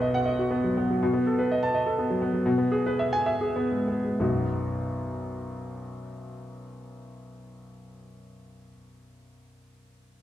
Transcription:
0.00 0.97 B1 medium
0.00 0.98 B2 medium
0.00 0.51 B3 medium
0.00 0.39 F#4 medium
0.00 1.04 B4 medium
0.00 0.21 D#5 medium
0.14 0.34 F#5 medium
0.26 0.46 D#5 medium
0.39 0.59 F#4 medium
0.51 0.71 B3 medium
0.64 0.84 F#3 soft
0.77 0.97 B3 medium
0.90 1.02 F#3 soft
1.03 2.42 B2 medium
1.13 1.33 B3 medium
1.27 1.46 A4 soft
1.39 1.58 B4 medium
1.51 1.70 D#5 medium
1.63 1.81 A5 medium
1.74 1.93 D#5 medium
1.86 2.05 A4 soft
1.99 2.17 B3 soft
2.10 2.29 F#3 soft
2.22 2.41 B3 medium
2.33 2.46 F#3 soft
2.46 4.15 B2 medium
2.58 2.79 B3 soft
2.72 2.93 G#4 medium
2.86 3.07 B4 medium
2.99 3.21 E5 medium
3.13 3.35 G#5 medium
3.26 3.50 E5 medium
3.41 3.65 G#4 soft
3.56 3.81 B3 medium
3.71 3.97 G#3 soft
3.88 4.13 B3 soft
4.04 4.20 G#3 soft
4.20 8.67 B1 soft
4.20 8.68 F#2 soft
4.20 8.67 F#3 soft
4.20 8.68 B3 soft
4.20 8.68 D#4 soft
4.20 8.68 F#4 soft

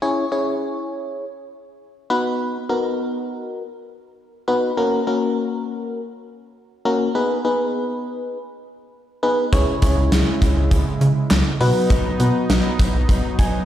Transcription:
0.02 0.25 C#4 medium
0.02 0.25 E4 medium
0.02 0.25 G#4 medium
0.02 0.25 C#5 loud
0.32 1.25 C#4 medium
0.32 1.25 E4 medium
0.32 1.25 G#4 medium
0.32 1.25 C#5 medium
2.10 2.58 B3 medium
2.10 2.58 D#4 medium
2.10 2.58 F#4 medium
2.10 2.58 B4 loud
2.69 3.63 B3 medium
2.69 3.63 D#4 medium
2.69 3.63 F#4 medium
2.69 3.63 A#4 medium
4.48 4.71 B3 medium
4.48 4.71 D#4 medium
4.48 4.71 F#4 medium
4.48 4.71 B4 medium
4.77 5.01 A#3 medium
4.77 5.01 C#4 medium
4.77 5.01 F#4 medium
4.77 5.01 A#4 loud
5.07 6.01 A#3 medium
5.07 6.01 C#4 medium
5.07 6.01 F#4 medium
5.07 6.01 A#4 medium
6.85 7.09 A#3 medium
6.85 7.09 C#4 medium
6.85 7.09 F#4 medium
6.85 7.09 A#4 loud
7.15 7.38 B3 medium
7.15 7.38 D#4 medium
7.15 7.38 G#4 medium
7.15 7.38 B4 loud
7.45 8.38 B3 medium
7.45 8.38 D#4 medium
7.45 8.38 G#4 medium
7.45 8.38 B4 medium
9.23 9.46 B3 medium
9.23 9.46 D#4 medium
9.23 9.46 G#4 medium
9.23 9.46 B4 loud
9.53 9.64 C#2 loud
9.53 11.58 C#3 medium
9.53 11.58 G#3 medium
9.53 9.76 C#4 medium
9.53 11.58 E4 loud
9.53 9.76 E4 medium
9.53 9.76 G#4 medium
9.53 9.76 C#5 loud
9.53 kick loud
9.53 closed hi-hat medium
9.82 9.94 C#2 loud
9.82 10.76 C#4 medium
9.82 10.76 E4 medium
9.82 10.76 G#4 medium
9.82 10.76 C#5 medium
9.82 kick loud
9.82 closed hi-hat medium
9.97 10.09 C#2 loud
10.12 10.24 C#2 loud
10.12 snare loud
10.12 closed hi-hat medium
10.42 10.53 C#2 loud
10.42 kick loud
10.42 closed hi-hat medium
10.57 10.68 C#2 loud
10.71 10.83 C#2 loud
10.71 kick medium
10.71 closed hi-hat medium
11.01 11.13 C#3 loud
11.01 closed hi-hat medium
11.31 11.42 C#2 loud
11.31 snare loud
11.31 clap loud
11.31 closed hi-hat medium
11.61 11.72 B2 loud
11.61 13.65 F#3 medium
11.61 12.08 B3 medium
11.61 13.65 B3 medium
11.61 12.08 D#4 medium
11.61 13.65 D#4 medium
11.61 12.08 F#4 medium
11.61 12.08 B4 loud
11.61 open hi-hat medium
11.90 12.02 B1 loud
11.90 kick loud
11.90 closed hi-hat medium
12.20 12.31 B2 loud
12.20 13.13 B3 medium
12.20 13.13 D#4 medium
12.20 13.13 F#4 medium
12.20 13.13 B4 medium
12.20 closed hi-hat medium
12.50 12.61 B1 loud
12.50 snare loud
12.50 closed hi-hat medium
12.79 12.91 B1 loud
12.79 kick loud
12.79 closed hi-hat medium
12.94 13.06 B1 loud
13.09 13.21 B1 loud
13.09 kick loud
13.09 closed hi-hat medium
13.39 13.50 B1 loud
13.39 13.65 G#5 medium
13.39 kick medium
13.39 closed hi-hat medium

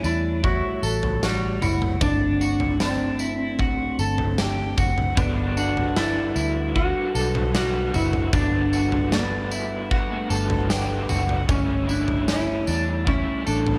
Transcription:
0.00 1.98 G3 medium
0.00 1.98 A3 medium
0.00 0.43 D4 medium
0.00 1.98 C#5 medium
0.04 0.60 E2 loud
0.04 0.44 E4 loud
0.04 tambourine medium
0.43 0.83 E4 loud
0.43 1.22 F#4 loud
0.43 kick medium
0.43 floor tom medium
0.83 1.58 A1 medium
0.83 1.23 A4 medium
0.83 tambourine medium
1.03 floor tom medium
1.23 1.62 G3 medium
1.23 1.62 F#4 medium
1.23 snare loud
1.23 tambourine medium
1.61 1.99 F#1 medium
1.61 2.02 E4 medium
1.61 2.01 F#4 medium
1.61 floor tom medium
1.61 tambourine medium
1.82 floor tom medium
2.01 3.95 G1 loud
2.01 5.15 A3 medium
2.01 5.14 C4 medium
2.01 2.41 D4 loud
2.01 11.45 D4 medium
2.01 2.80 D4 loud
2.01 kick loud
2.01 floor tom loud
2.01 tambourine medium
2.41 2.80 F#4 medium
2.41 tambourine medium
2.60 floor tom medium
2.80 4.34 C4 medium
2.80 3.20 D4 medium
2.80 snare loud
2.80 tambourine medium
3.19 3.59 E4 medium
3.19 tambourine medium
3.59 3.99 F#4 medium
3.59 kick medium
3.59 floor tom medium
3.99 4.74 G1 medium
3.99 4.38 A4 medium
3.99 tambourine medium
4.18 floor tom medium
4.38 4.78 G4 medium
4.38 snare loud
4.38 tambourine medium
4.78 5.15 F#1 medium
4.78 5.17 F#4 medium
4.78 kick loud
4.78 floor tom medium
4.78 tambourine medium
4.98 floor tom medium
5.16 6.32 G1 medium
5.16 6.74 G3 medium
5.16 11.45 G3 medium
5.16 5.58 B3 loud
5.16 6.74 B3 medium
5.16 5.57 D4 loud
5.16 6.76 D4 medium
5.16 11.45 A4 medium
5.16 11.45 B4 medium
5.16 11.45 F#5 medium
5.16 kick loud
5.16 floor tom loud
5.16 tambourine medium
5.21 6.77 F#4 medium
5.57 5.98 D4 loud
5.57 5.96 F#4 medium
5.57 tambourine medium
5.77 floor tom medium
5.96 6.36 D4 medium
5.96 6.75 E4 loud
5.96 snare loud
5.96 tambourine loud
6.36 6.92 D2 loud
6.36 6.75 E4 medium
6.36 tambourine medium
6.74 7.53 G3 medium
6.74 7.53 B3 medium
6.74 7.54 D4 medium
6.74 7.14 F#4 medium
6.74 7.54 F#4 loud
6.74 7.56 F#4 medium
6.74 kick medium
7.15 7.90 B1 medium
7.15 7.54 A4 medium
7.15 tambourine medium
7.35 floor tom medium
7.53 8.31 G3 medium
7.53 7.94 G3 medium
7.53 8.32 B3 medium
7.53 8.34 D4 medium
7.53 7.95 F#4 loud
7.53 8.34 F#4 medium
7.53 snare loud
7.53 tambourine loud
7.94 8.31 F#1 medium
7.94 8.34 E4 medium
7.94 8.33 F#4 medium
7.94 floor tom medium
7.94 tambourine medium
8.13 floor tom medium
8.31 10.27 G1 loud
8.31 9.90 G3 medium
8.31 9.90 B3 medium
8.31 8.73 D4 loud
8.31 9.15 D4 loud
8.31 kick loud
8.31 floor tom loud
8.31 tambourine medium
8.35 9.92 D4 medium
8.35 9.92 F#4 medium
8.73 9.12 F#4 medium
8.73 tambourine medium
8.92 floor tom medium
9.12 10.15 B3 medium
9.12 9.52 D4 medium
9.12 snare loud
9.12 tambourine medium
9.51 9.91 E4 medium
9.51 tambourine medium
9.90 10.68 G3 medium
9.90 10.69 B3 medium
9.90 10.70 D4 medium
9.90 10.30 F#4 loud
9.90 10.71 F#4 medium
9.90 kick medium
10.15 10.66 A3 medium
10.30 11.05 G1 medium
10.30 10.69 A4 medium
10.30 tambourine medium
10.50 floor tom medium
10.69 11.47 G3 medium
10.69 11.49 B3 medium
10.69 11.50 D4 medium
10.69 11.50 F#4 medium
10.69 11.09 G4 medium
10.69 snare loud
10.69 tambourine medium
11.09 11.47 F#1 medium
11.09 11.49 F#4 medium
11.09 floor tom medium
11.09 tambourine medium
11.29 floor tom medium
11.47 12.63 G1 loud
11.47 13.04 G3 medium
11.47 13.79 G3 medium
11.47 13.79 A3 medium
11.47 11.88 C#4 loud
11.47 11.90 C#4 medium
11.47 13.79 C#5 medium
11.47 kick loud
11.47 floor tom loud
11.47 tambourine medium
11.51 13.07 E4 medium
11.51 13.08 A4 medium
11.88 12.29 D4 medium
11.88 12.28 E4 medium
11.88 tambourine medium
12.08 floor tom medium
12.28 12.67 C#4 medium
12.28 13.08 E4 loud
12.28 snare loud
12.28 tambourine medium
12.67 13.24 E2 loud
12.67 13.07 D4 medium
12.67 tambourine medium
13.05 13.79 G3 medium
13.05 13.48 C#4 medium
13.05 13.46 E4 medium
13.05 13.79 E4 medium
13.05 13.79 A4 medium
13.05 kick medium
13.05 floor tom medium
13.46 13.79 A1 medium
13.46 13.79 D4 medium
13.46 13.79 A4 medium
13.46 tambourine medium
13.67 floor tom medium

